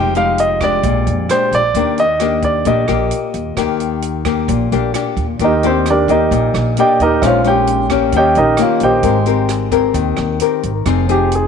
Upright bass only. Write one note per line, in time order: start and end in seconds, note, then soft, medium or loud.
0.00 0.80 F1 medium
0.83 1.08 A#1 loud
1.06 1.28 F2 medium
1.52 1.73 A#1 medium
1.75 2.62 D#2 medium
2.65 2.87 A#1 medium
2.88 3.10 A#1 medium
3.34 3.56 D#2 medium
3.57 4.44 D#2 medium
4.48 4.70 A#1 medium
4.72 4.93 A#1 medium
5.17 5.38 D#2 medium
5.39 6.27 D#2 medium
6.31 6.52 A#1 medium
6.54 6.75 A#1 medium
6.99 7.21 D#2 medium
7.22 8.09 A#1 medium
8.13 8.38 D#2 medium
8.37 8.58 A#1 medium
8.81 9.02 A#1 medium
9.03 9.91 G#1 medium
9.94 10.16 D#2 medium
10.18 10.39 D#2 medium
10.64 10.85 G#1 medium
10.86 11.47 F1 medium